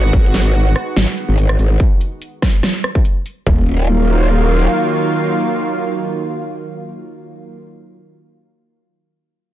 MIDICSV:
0, 0, Header, 1, 4, 480
1, 0, Start_track
1, 0, Key_signature, -6, "minor"
1, 0, Tempo, 416667
1, 152, Time_signature, 4, 2, 24, 8
1, 10984, End_track
2, 0, Start_track
2, 0, Title_t, "Analog synth pad"
2, 0, Program_c, 0, 89
2, 0, Note_on_c, 0, 51, 86
2, 0, Note_on_c, 0, 56, 79
2, 0, Note_on_c, 0, 59, 78
2, 0, Note_on_c, 0, 66, 94
2, 2026, Note_off_c, 0, 51, 0
2, 2026, Note_off_c, 0, 59, 0
2, 2027, Note_off_c, 0, 56, 0
2, 2044, Note_off_c, 0, 66, 0
2, 3992, Note_on_c, 0, 51, 85
2, 3992, Note_on_c, 0, 54, 81
2, 3992, Note_on_c, 0, 58, 77
2, 3992, Note_on_c, 0, 65, 93
2, 8708, Note_off_c, 0, 51, 0
2, 8708, Note_off_c, 0, 54, 0
2, 8708, Note_off_c, 0, 58, 0
2, 8708, Note_off_c, 0, 65, 0
2, 10984, End_track
3, 0, Start_track
3, 0, Title_t, "Wobble bass"
3, 0, Program_c, 1, 39
3, 0, Note_on_c, 1, 32, 97
3, 134, Note_off_c, 1, 32, 0
3, 152, Note_on_c, 1, 32, 100
3, 855, Note_off_c, 1, 32, 0
3, 1112, Note_on_c, 1, 32, 103
3, 1220, Note_off_c, 1, 32, 0
3, 1480, Note_on_c, 1, 32, 102
3, 1814, Note_off_c, 1, 32, 0
3, 1832, Note_on_c, 1, 32, 101
3, 2054, Note_off_c, 1, 32, 0
3, 3992, Note_on_c, 1, 27, 95
3, 5386, Note_off_c, 1, 27, 0
3, 10984, End_track
4, 0, Start_track
4, 0, Title_t, "Drums"
4, 152, Note_on_c, 9, 36, 113
4, 152, Note_on_c, 9, 42, 79
4, 267, Note_off_c, 9, 42, 0
4, 268, Note_off_c, 9, 36, 0
4, 392, Note_on_c, 9, 38, 61
4, 392, Note_on_c, 9, 42, 51
4, 507, Note_off_c, 9, 38, 0
4, 507, Note_off_c, 9, 42, 0
4, 632, Note_on_c, 9, 42, 75
4, 747, Note_off_c, 9, 42, 0
4, 872, Note_on_c, 9, 37, 57
4, 872, Note_on_c, 9, 46, 66
4, 987, Note_off_c, 9, 37, 0
4, 987, Note_off_c, 9, 46, 0
4, 1112, Note_on_c, 9, 38, 122
4, 1112, Note_on_c, 9, 42, 84
4, 1228, Note_off_c, 9, 38, 0
4, 1228, Note_off_c, 9, 42, 0
4, 1352, Note_on_c, 9, 42, 52
4, 1468, Note_off_c, 9, 42, 0
4, 1593, Note_on_c, 9, 42, 76
4, 1708, Note_off_c, 9, 42, 0
4, 1721, Note_on_c, 9, 37, 83
4, 1832, Note_on_c, 9, 46, 94
4, 1836, Note_off_c, 9, 37, 0
4, 1948, Note_off_c, 9, 46, 0
4, 2072, Note_on_c, 9, 42, 84
4, 2073, Note_on_c, 9, 36, 122
4, 2187, Note_off_c, 9, 42, 0
4, 2188, Note_off_c, 9, 36, 0
4, 2312, Note_on_c, 9, 42, 57
4, 2427, Note_off_c, 9, 42, 0
4, 2553, Note_on_c, 9, 42, 81
4, 2668, Note_off_c, 9, 42, 0
4, 2793, Note_on_c, 9, 36, 61
4, 2793, Note_on_c, 9, 37, 59
4, 2793, Note_on_c, 9, 38, 65
4, 2793, Note_on_c, 9, 46, 68
4, 2908, Note_off_c, 9, 36, 0
4, 2908, Note_off_c, 9, 37, 0
4, 2908, Note_off_c, 9, 38, 0
4, 2908, Note_off_c, 9, 46, 0
4, 3033, Note_on_c, 9, 37, 68
4, 3033, Note_on_c, 9, 38, 124
4, 3033, Note_on_c, 9, 42, 86
4, 3148, Note_off_c, 9, 37, 0
4, 3148, Note_off_c, 9, 38, 0
4, 3148, Note_off_c, 9, 42, 0
4, 3273, Note_on_c, 9, 37, 83
4, 3273, Note_on_c, 9, 42, 53
4, 3388, Note_off_c, 9, 37, 0
4, 3388, Note_off_c, 9, 42, 0
4, 3401, Note_on_c, 9, 36, 64
4, 3513, Note_on_c, 9, 42, 82
4, 3516, Note_off_c, 9, 36, 0
4, 3628, Note_off_c, 9, 42, 0
4, 3752, Note_on_c, 9, 46, 97
4, 3868, Note_off_c, 9, 46, 0
4, 3992, Note_on_c, 9, 43, 106
4, 3993, Note_on_c, 9, 36, 101
4, 4108, Note_off_c, 9, 36, 0
4, 4108, Note_off_c, 9, 43, 0
4, 10984, End_track
0, 0, End_of_file